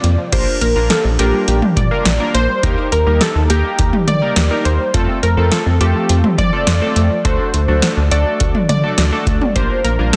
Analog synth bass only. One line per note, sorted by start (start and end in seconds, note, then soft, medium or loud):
0.04 0.17 F2 loud
0.32 0.46 A#1 loud
0.61 0.74 A#1 loud
0.76 0.89 A#1 medium
1.05 1.18 A#1 loud
1.19 1.32 A#1 loud
1.48 1.61 A#1 loud
1.76 1.90 A#2 medium
2.06 2.19 A#1 loud
2.34 2.48 A#1 loud
2.63 2.76 D#2 loud
2.92 3.05 D#2 medium
3.07 3.20 D#2 loud
3.35 3.49 D#2 loud
3.50 3.63 D#2 loud
3.79 3.92 D#2 loud
4.07 4.21 D#3 medium
4.36 4.49 D#2 loud
4.65 4.78 D#2 loud
4.94 5.07 F2 loud
5.23 5.36 F2 loud
5.37 5.50 F2 loud
5.66 5.79 F2 medium
5.81 5.94 F2 loud
6.09 6.23 F2 loud
6.38 6.51 F3 loud
6.67 6.80 F2 loud
6.96 7.09 F2 loud
7.25 7.38 D2 loud
7.54 7.67 D2 loud
7.68 7.81 D2 medium
7.97 8.10 D2 loud
8.11 8.24 D2 loud
8.40 8.53 D2 loud
8.69 8.82 D3 loud
8.98 9.11 D2 loud
9.26 9.40 D2 medium
9.56 9.69 A#1 loud
9.84 9.98 A#1 loud
9.99 10.12 A#1 loud